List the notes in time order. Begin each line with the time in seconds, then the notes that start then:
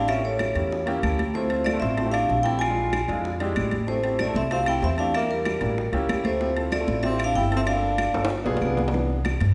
Already playing: A1
0.08 C#4 E5, high bongo, high conga, high timbale, claves
0.16 A#3 C#4 E4 G4
0.24 A3 C#5, high conga
0.39 high bongo, high conga, high timbale, claves
0.55 E2 A#3 C#4 E4 G4, high bongo, high conga, high timbale
0.72 high bongo, high conga
0.86 A#3 C#4 E4 G4, high bongo, high conga, high timbale
1.03 D2 A5, high bongo, low bongo, high conga, high timbale, claves
1.19 high bongo, high conga, high timbale
1.34 A3 C4 E4 F4 C5, high bongo, high conga
1.49 A3 C4 E4 F4, high conga, high timbale
1.65 A3 D5, high bongo, high conga, high timbale, claves
1.73 A3 C4 E4 F4
1.80 A1 C4 E5, high bongo, high conga
1.97 A3 C4 E4 F4, high bongo, high conga, high timbale
2.05 A3 C4 E4 G4
2.12 D4 F5, high bongo, high conga, high timbale, claves
2.29 A#1, high bongo, low bongo, high conga
2.43 A3 C4 E4 G4 G5, high bongo, high conga, high timbale
2.59 F4 G#5, high bongo, high conga, high timbale, claves
2.68 G#3 D4 E4 F4
2.78 high conga
2.93 high bongo, high conga, high timbale, claves
3.08 F2 G#3 D4 E4 F4, high bongo, high conga, high timbale
3.25 high bongo, high conga
3.40 G#3 D4 E4 G4, high bongo, high conga, high timbale
3.56 A1, high bongo, low bongo, high conga, high timbale, claves
3.71 high bongo, high conga, high timbale
3.87 A3 C4 E4 G4 C5, high bongo, high conga
4.03 A3 C4 E4 G4, high conga, high timbale
4.19 A3 D5, high bongo, high conga, high timbale, claves
4.27 A3 C4 E4 A4
4.34 C2 C4 E5, high conga
4.50 A3 C4 E4 G4 F5, high bongo, high conga, high timbale
4.58 A3 C4 E4 G4
4.66 E4 G5, high bongo, high conga, high timbale, claves
4.82 E2 C4 E5, high bongo, low bongo, high conga, low timbale
4.98 A3 C4 D4 E4 G4 F5, high bongo, high conga, high timbale
5.14 A#3 E5, high bongo, high conga, high timbale, claves
5.21 A#3 D4 E4 G4
5.31 G3 A#4, high conga
5.45 high bongo, high conga, high timbale, claves
5.61 A1 A#3 D4 E4 G4, high bongo, high conga, high timbale
5.78 high bongo, high conga
5.92 C#2 A#3 C#4 E4 G4, high conga, high timbale
6.09 D2, high bongo, low bongo, high conga, high timbale, low timbale, claves
6.25 A3 C5, high bongo, high conga, high timbale
6.40 C4 E4 F4 G4, high bongo, high conga
6.55 C4 E4 F4 A4, high conga, high timbale
6.72 A3 D5, high bongo, high conga, high timbale, claves
6.79 C4 E4 F4 A4
6.87 A1, high conga
7.02 C4 E4 F4 G4 E5, high bongo, high conga, high timbale
7.10 C4 E4 F4 G4
7.19 high bongo, high conga, high timbale, claves
7.24 D4 F5
7.35 G1 E4 G5, high bongo, low bongo, high conga, low timbale
7.50 C4 E4 F4 A4, high bongo, high conga, high timbale
7.56 C4 E5
7.67 D4 F5, high bongo, high conga, high timbale, claves
7.74 A#3 D4 F4 A4
7.82 high conga
7.98 high bongo, high conga, high timbale, claves
8.13 G1 A#3 D4 F4 A4, high bongo, high conga, high timbale
8.25 high timbale
8.30 high bongo, high conga
8.45 B1 B3 D4 F4 G#4, high bongo, high conga, low timbale
8.57 low timbale
8.61 C2, high conga, claves
8.77 low bongo, high conga, low timbale
8.88 low timbale
8.93 E3 B3 D4, high bongo, high conga
9.10 high bongo, high conga
9.25 high bongo, high conga, high timbale, low timbale, claves
9.40 G2, high conga, high timbale